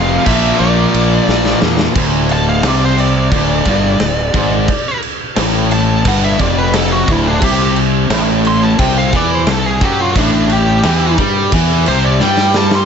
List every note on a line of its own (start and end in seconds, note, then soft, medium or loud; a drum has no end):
0.00 0.17 F1 medium
0.00 0.24 F2 medium
0.00 0.25 C3 loud
0.00 0.25 F3 loud
0.00 0.24 F5 medium
0.25 0.51 A#1 medium
0.25 1.94 A#2 medium
0.25 1.94 F3 medium
0.25 1.95 A#3 loud
0.25 0.58 E5 medium
0.25 kick loud
0.25 crash medium
0.60 0.85 A#1 loud
0.60 1.58 D5 medium
0.94 1.19 A#1 medium
0.94 ride medium
1.28 1.53 A#1 medium
1.28 snare medium
1.45 snare medium
1.62 1.87 E2 medium
1.62 snare loud
1.79 snare loud
1.95 2.60 D1 loud
1.95 2.63 D2 loud
1.95 kick loud
1.95 crash medium
2.29 2.48 A5 medium
2.29 crash medium
2.49 2.65 F5 medium
2.63 3.28 C2 loud
2.63 3.31 C3 medium
2.63 snare loud
2.63 crash medium
2.68 2.83 D5 medium
2.85 3.00 C5 medium
2.98 5.00 D5 loud
2.98 crash medium
3.31 3.64 D1 loud
3.31 3.65 D2 loud
3.31 kick loud
3.31 crash medium
3.65 3.98 G1 medium
3.65 4.00 G2 loud
3.65 kick loud
3.65 crash medium
4.00 4.32 D1 medium
4.00 4.28 D2 medium
4.00 snare loud
4.00 crash medium
4.34 4.67 G#1 loud
4.34 4.68 G#2 loud
4.34 kick loud
4.34 crash medium
4.68 kick loud
4.68 crash medium
5.02 crash medium
5.36 6.02 A1 loud
5.36 6.04 A2 loud
5.36 snare loud
5.36 crash medium
5.71 6.05 A5 loud
5.71 crash medium
6.05 6.38 G1 medium
6.05 6.38 G2 loud
6.05 6.24 F#5 medium
6.05 kick loud
6.05 crash medium
6.24 6.39 E5 medium
6.39 7.05 F1 loud
6.39 7.07 F2 loud
6.39 6.56 D5 medium
6.39 kick loud
6.39 crash medium
6.58 6.74 B4 medium
6.74 6.92 A4 medium
6.74 snare loud
6.74 crash medium
6.92 7.11 F#4 medium
7.08 7.40 D1 loud
7.08 7.41 D2 loud
7.08 7.27 E4 medium
7.08 kick loud
7.08 crash medium
7.28 7.43 D4 medium
7.42 8.07 C2 loud
7.42 8.10 C3 loud
7.42 7.77 G4 loud
7.42 kick loud
7.42 crash medium
7.76 crash medium
8.10 8.75 A1 loud
8.10 8.78 A2 loud
8.10 snare loud
8.10 crash medium
8.45 8.63 C6 loud
8.45 crash medium
8.63 8.79 A5 medium
8.78 9.11 C2 loud
8.78 9.12 C3 loud
8.78 8.96 G5 medium
8.78 kick loud
8.78 crash medium
8.98 9.14 F5 medium
9.13 9.45 E2 loud
9.13 9.47 E3 loud
9.13 kick loud
9.13 crash medium
9.17 9.34 D5 medium
9.34 9.49 C5 medium
9.47 9.79 C2 medium
9.47 9.75 C3 medium
9.47 snare loud
9.47 crash medium
9.51 9.66 A4 medium
9.66 9.82 G#4 medium
9.81 10.14 F#2 loud
9.81 10.15 F#3 loud
9.81 kick loud
9.81 crash medium
9.85 10.00 G4 loud
10.00 10.17 F4 medium
10.15 10.81 A1 medium
10.15 10.84 A2 loud
10.15 10.51 D4 medium
10.15 kick loud
10.15 crash medium
10.49 11.18 G4 loud
10.49 crash medium
10.83 11.16 E2 loud
10.83 11.18 E3 loud
10.83 snare loud
10.83 crash medium
11.17 11.51 G2 medium
11.17 11.52 G3 loud
11.17 kick loud
11.17 crash medium
11.52 11.85 E2 loud
11.52 11.86 E3 loud
11.52 kick loud
11.52 crash medium
11.86 12.20 C2 loud
11.86 12.20 C3 loud
11.86 12.05 C5 loud
11.86 crash medium
12.05 12.21 D5 medium
12.20 12.85 G2 medium
12.20 12.85 G3 loud
12.20 12.55 G5 medium
12.20 snare medium
12.37 snare medium
12.54 12.73 A5 medium
12.54 snare loud
12.71 12.85 C6 medium
12.71 snare loud